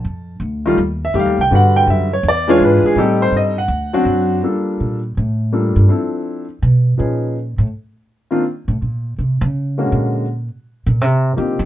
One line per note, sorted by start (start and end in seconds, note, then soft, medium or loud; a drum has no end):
0.00 0.39 A5 medium
0.05 0.39 F2 medium
0.40 0.76 D2 medium
0.66 0.77 D#3 medium
0.66 0.77 G3 medium
0.66 0.77 A3 medium
0.66 0.78 F4 medium
0.78 1.13 D#2 medium
1.05 1.15 E5 medium
1.14 1.25 F2 medium
1.14 1.35 D#3 medium
1.14 1.36 G3 soft
1.14 1.36 A3 soft
1.14 1.36 G4 medium
1.20 1.40 F5 medium
1.25 1.38 D#2 medium
1.38 1.50 C2 medium
1.38 1.52 G5 loud
1.51 1.86 G2 medium
1.51 2.06 D3 medium
1.51 2.07 G3 medium
1.51 2.07 B3 medium
1.51 2.07 F#4 medium
1.55 1.76 F#5 medium
1.76 1.88 G5 loud
1.87 2.23 F#2 medium
1.87 2.12 E5 medium
2.13 2.25 C#5 medium
2.23 2.59 E2 medium
2.28 2.49 D5 loud
2.48 2.94 E3 medium
2.48 2.94 G#3 medium
2.48 2.95 D4 medium
2.48 2.95 F4 medium
2.48 2.61 C#5 medium
2.60 2.82 G#2 medium
2.64 2.85 B4 medium
2.83 2.97 G#4 medium
2.83 muted upright bass stroke soft
2.96 3.31 A2 medium
2.96 3.52 G3 medium
2.96 3.53 C4 medium
2.96 3.53 D#4 medium
2.96 3.21 G4 medium
2.96 3.53 A4 medium
3.22 3.34 C5 medium
3.32 3.68 G2 medium
3.37 3.58 D#5 medium
3.58 4.33 F#5 medium
3.68 4.04 D2 medium
3.93 4.40 F#3 medium
3.93 4.40 C4 medium
3.93 4.40 D4 medium
3.93 4.40 F#4 medium
4.05 4.41 F#2 medium
4.43 4.98 G3 soft
4.43 4.98 A#3 soft
4.43 4.99 D4 soft
4.43 4.99 F4 soft
4.43 4.99 A4 medium
4.80 5.14 A#2 medium
5.17 5.73 A2 medium
5.53 5.89 G3 soft
5.53 5.89 A#3 soft
5.53 5.87 D4 soft
5.53 5.89 F4 soft
5.53 5.88 A4 soft
5.76 5.88 G2 medium
5.88 6.44 F3 soft
5.88 6.44 C4 soft
5.88 6.44 D4 soft
5.88 6.44 E4 soft
5.88 6.45 A4 soft
6.62 6.96 B2 medium
6.98 7.55 A#2 medium
6.98 7.34 F3 soft
6.98 7.35 C#4 soft
6.98 7.35 D#4 soft
6.98 7.35 G#4 soft
6.98 7.35 B4 soft
7.58 7.66 A2 medium
8.31 8.42 D#3 medium
8.31 8.43 A#3 soft
8.31 8.43 C4 medium
8.31 8.43 D4 medium
8.31 8.43 F4 medium
8.68 8.80 A2 medium
8.82 9.15 A#2 medium
9.19 9.41 C3 medium
9.41 9.87 C#3 loud
9.78 10.24 D3 medium
9.78 10.24 G#3 soft
9.78 10.24 A#3 soft
9.78 10.25 C#4 soft
9.78 10.25 F#4 medium
9.92 10.47 A#2 medium
10.86 11.01 A#2 medium
11.01 11.37 C3 medium
11.36 11.59 D3 medium
11.36 11.57 F3 soft
11.36 11.57 A#3 soft
11.36 11.58 C4 soft
11.36 11.58 D#4 soft
11.36 11.58 G4 soft
11.59 11.65 D#3 medium